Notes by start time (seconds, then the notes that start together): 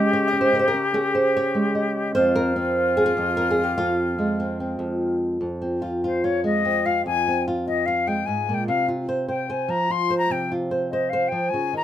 Already playing: C#3 G#3 C#4 G4 G#4 D#5
0.13 C#5
0.28 D#5
0.33 C#4
0.41 C5
0.53 C#3 A#4
0.59 C5
0.68 A#4
0.74 C#4
0.94 C#4 G#4
1.15 C5
1.37 C#5
1.55 G#3
1.75 D#5
2.15 F2 C4 F4 C5
2.36 A#4
2.56 C4
2.97 G#4
3.06 G#4
3.17 F2 F4
3.37 A#4
3.51 G#4
3.59 F4
3.63 G4
3.78 F2 F4
4.18 G#3
4.40 C4
4.60 C4
4.79 F2
5.41 F2
5.62 C4
5.82 F4
6.04 F4 C5
6.24 F4 C#5
6.44 G#3 D#5
6.65 C4
6.86 F4 F5
7.06 F2 G#5
7.28 C4
7.48 F4
7.67 F4 D#5
7.86 F4 F5
8.07 G#3 G5
8.26 G#2 G#5
8.49 A#2
8.54 G5
8.68 C3 F5
8.88 F4
9.09 C5
9.28 C5 G5
9.50 C5 G#5
9.68 F3 A#5
9.90 F4 C6
10.10 C5
10.18 A#5
10.30 C3 G5
10.52 F4
10.71 C5
10.91 C5 D#5
11.09 C5 F5
11.28 F3 G5
11.49 G#5
11.54 C#3
11.73 D#3 A#5